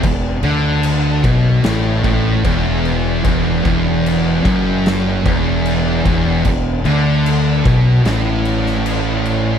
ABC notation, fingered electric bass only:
X:1
M:4/4
L:1/8
Q:1/4=75
K:Emix
V:1 name="Fingered electric bass" clef=bass
E,,, D,,2 B,,, A,,, A,,, E,,,2 | E,,, E,,,2 F,,,2 E,,,2 E,,, | E,,, D,,2 B,,, A,,,4 |]